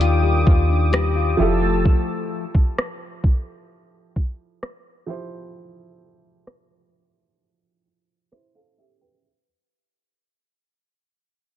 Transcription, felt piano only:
0.00 1.34 D#3 medium
0.00 1.35 D4 medium
0.00 1.35 F4 medium
0.00 1.36 A#4 medium
1.37 5.03 F3 medium
1.37 5.04 E4 medium
1.37 5.05 G4 medium
1.37 5.05 A4 medium
5.06 8.73 F3 medium
5.06 7.81 E4 medium
5.06 7.81 G4 medium
5.06 7.82 C5 medium
8.32 8.54 E4 soft
8.32 8.53 C5 medium
8.55 8.77 A4 medium
8.55 8.77 F5 medium
8.78 9.00 G4 medium
8.78 9.00 E5 medium
9.01 9.45 B4 soft
9.01 9.45 G5 medium

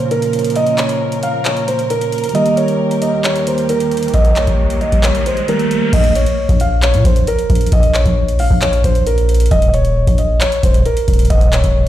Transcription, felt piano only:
0.11 0.53 A#4 medium
0.56 0.75 D#5 loud
0.78 1.20 C#5 medium
1.23 1.42 F5 medium
1.45 1.64 C#5 medium
1.68 1.87 C5 medium
1.90 2.32 A#4 medium
2.35 2.54 D#5 loud
2.57 2.99 C#5 medium
3.02 3.21 D#5 medium
3.24 3.43 C#5 medium
3.47 3.66 C5 medium
3.69 4.11 A#4 medium
4.14 4.33 D#5 loud
4.36 4.79 C#5 medium
4.81 5.00 D#5 medium
5.03 5.22 C#5 medium
5.26 5.45 C5 medium
5.49 5.91 A#4 loud
5.93 6.12 D#5 loud
6.16 6.58 C#5 medium
6.61 6.80 F5 medium
6.83 7.02 C#5 medium
7.05 7.24 C5 medium
7.28 7.70 A#4 medium
7.73 7.91 D#5 loud
7.95 8.37 C#5 medium
8.40 8.58 F5 medium
8.62 8.81 C#5 medium
8.84 9.03 C5 medium
9.07 9.49 A#4 medium
9.51 9.70 D#5 loud
9.73 10.16 C#5 medium
10.18 10.37 D#5 medium
10.41 10.60 C#5 medium
10.63 10.82 C5 medium
10.86 11.28 A#4 medium
11.30 11.49 D#5 loud
11.53 11.88 C#5 medium

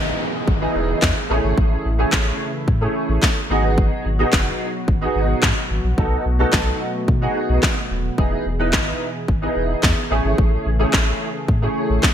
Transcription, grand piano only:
0.00 0.26 B3 medium
0.00 0.26 D#4 medium
0.00 0.26 E4 medium
0.00 0.27 B4 medium
0.61 1.17 B3 medium
0.61 1.17 D#4 medium
0.61 1.17 E4 medium
0.61 1.17 G#4 medium
1.30 1.85 A3 medium
1.30 1.85 C#4 medium
1.30 1.85 E4 medium
1.30 1.85 G#4 loud
1.98 2.46 A3 medium
1.98 2.46 C#4 medium
1.98 2.47 E4 medium
1.98 2.47 G#4 medium
2.81 3.37 A3 medium
2.81 3.37 C#4 medium
2.81 3.37 E4 medium
2.81 3.37 G#4 medium
3.50 4.05 B3 medium
3.50 4.05 D#4 medium
3.50 4.05 F#4 medium
3.50 4.05 G#4 loud
4.19 4.67 B3 medium
4.19 4.67 D#4 medium
4.19 4.67 F#4 medium
4.19 4.67 G#4 medium
5.01 5.57 B3 medium
5.01 5.57 D#4 medium
5.01 5.57 F#4 medium
5.01 5.57 G#4 medium
5.98 6.22 B3 medium
5.98 6.22 D#4 medium
5.98 6.22 F#4 medium
5.98 6.22 A4 medium
6.39 6.87 B3 medium
6.39 6.87 D#4 medium
6.39 6.87 F#4 medium
6.39 6.87 A4 medium
7.21 7.77 B3 medium
7.21 7.77 D#4 medium
7.21 7.78 F#4 medium
7.21 7.78 G#4 medium
8.18 8.42 B3 medium
8.18 8.42 D#4 medium
8.18 8.42 E4 medium
8.18 8.42 G#4 medium
8.59 9.07 B3 medium
8.59 9.07 D#4 medium
8.59 9.07 E4 medium
8.59 9.07 B4 medium
9.42 9.98 B3 medium
9.42 9.98 D#4 medium
9.42 9.98 E4 medium
9.42 9.98 G#4 medium
10.10 10.66 A3 medium
10.10 10.66 C#4 medium
10.10 10.66 E4 medium
10.10 10.66 G#4 loud
10.79 11.27 A3 medium
10.79 11.27 C#4 medium
10.79 11.27 E4 medium
10.79 11.27 G#4 medium
11.62 12.14 A3 medium
11.62 12.14 C#4 medium
11.62 12.14 E4 medium
11.62 12.14 G#4 medium

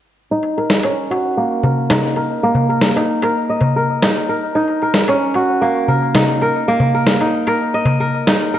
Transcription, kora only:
0.31 1.90 D#4 medium
0.57 1.63 A#4 medium
0.84 2.58 C#4 medium
1.11 2.57 F#4 medium
1.37 2.43 A#3 medium
1.64 2.16 A#4 medium
1.90 2.96 D#4 medium
2.17 2.69 A#4 medium
2.43 4.36 A#3 medium
2.69 3.23 A#4 medium
2.96 4.02 D#4 medium
3.23 3.76 A#4 medium
3.49 4.56 D#5 medium
3.76 4.28 A#4 medium
4.03 4.55 D#4 medium
4.29 4.82 A#4 medium
4.55 6.15 D#4 medium
4.82 5.88 A#4 medium
5.09 6.83 C#4 medium
5.35 6.82 F#4 medium
5.62 6.68 A#3 medium
5.88 6.42 A#4 medium
6.15 7.21 D#4 medium
6.42 6.94 A#4 medium
6.68 8.59 A#3 medium
6.95 7.47 A#4 medium
7.21 8.27 D#4 medium
7.47 8.00 A#4 medium
7.74 8.59 D#5 medium
8.00 8.53 A#4 medium
8.27 8.59 D#4 medium
8.54 8.59 A#4 medium

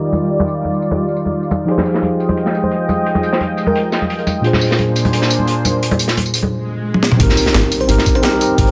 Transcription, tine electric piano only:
0.00 1.65 D#3 medium
0.00 1.66 F4 medium
0.00 1.66 G4 medium
0.00 1.67 A#4 medium
0.00 1.68 D5 medium
1.65 4.41 F3 medium
1.65 4.41 D#4 medium
1.65 4.42 G4 medium
1.70 4.43 G#4 medium
1.70 4.44 C5 medium
4.41 6.50 A#2 medium
4.41 6.50 D4 medium
4.41 6.51 F4 medium
4.46 6.52 G#4 medium
4.46 6.53 C5 medium
7.17 7.86 C4 medium
7.17 7.86 D#4 medium
7.17 7.88 G4 medium
7.23 7.89 A#4 loud
7.88 8.04 C4 medium
7.88 8.04 D#4 medium
7.88 8.05 G4 medium
7.88 8.05 A#4 loud
8.22 8.33 C4 loud
8.22 8.33 D#4 medium
8.22 8.34 G4 medium
8.22 8.34 A#4 loud
8.39 8.54 C4 medium
8.39 8.56 D#4 medium
8.39 8.56 G4 medium
8.39 8.57 A#4 medium
8.55 8.71 C4 medium
8.55 8.71 D#4 medium
8.59 8.71 G4 medium
8.59 8.71 A#4 loud

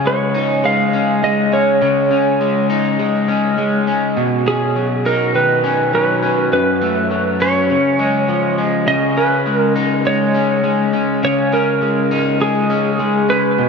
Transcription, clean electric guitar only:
0.00 1.80 C#3 medium
0.00 0.93 C#4 medium
0.05 0.63 G#3 medium
0.34 2.69 D#4 medium
0.64 1.22 G#3 medium
0.93 1.52 C#4 medium
1.23 2.39 G#3 medium
1.52 2.10 C#4 medium
1.82 4.17 C#3 medium
2.11 3.28 C#4 medium
2.41 2.98 G#3 medium
2.70 4.49 D#4 medium
2.99 3.57 G#3 medium
3.28 3.87 C#4 medium
3.58 4.23 G#3 medium
3.87 4.46 C#4 medium
4.17 6.52 B2 medium
4.46 5.64 C#4 medium
4.76 5.92 F#3 medium
5.05 6.58 D#4 medium
5.35 6.58 D#3 medium
5.64 6.22 C#4 medium
5.93 6.58 F#3 medium
6.23 6.81 C#4 medium
6.52 7.76 F#2 medium
6.81 7.76 A3 medium
7.11 7.76 F#3 medium
7.40 9.17 C#4 medium
7.70 8.86 C#3 medium
7.99 8.58 G#3 medium
8.28 8.93 F3 medium
8.58 9.16 G#3 medium
8.87 11.22 C#3 medium
9.17 10.34 C#4 medium
9.46 10.04 G#3 medium
9.76 12.11 D#4 medium
10.05 10.63 G#3 medium
10.34 10.93 C#4 medium
10.64 11.80 G#3 medium
10.93 11.52 C#4 medium
11.23 13.58 C#3 medium
11.52 12.70 C#4 medium
11.82 12.39 G#3 medium
12.11 13.69 D#4 medium
12.40 12.98 G#3 medium
12.70 13.28 C#4 medium
12.99 13.64 G#3 medium
13.29 13.69 C#4 medium
13.58 13.69 B2 medium

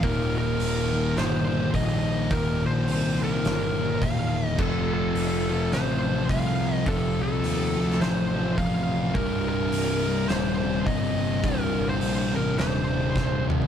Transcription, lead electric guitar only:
0.03 0.37 A#4 medium
0.38 1.18 A#4 medium
1.18 1.71 C5 medium
1.75 2.33 D#5 loud
2.31 2.63 A#4 medium
2.66 3.23 C5 loud
3.24 4.05 A#4 medium
4.03 4.48 F5 medium
4.48 4.61 D#5 medium
4.59 4.93 A4 medium
4.94 5.73 A4 medium
5.73 6.26 C5 medium
6.31 6.76 F5 medium
6.76 6.89 D#5 medium
6.89 7.19 A4 medium
7.23 8.01 A4 medium
8.02 8.60 C5 medium
8.58 9.16 F5 medium
9.14 9.48 A#4 medium
9.49 10.28 A#4 medium
10.29 10.88 C5 medium
10.86 11.45 D#5 medium
11.44 11.89 A#4 medium
11.89 12.35 C5 medium
12.36 12.57 A#4 medium
12.59 13.46 C5 medium

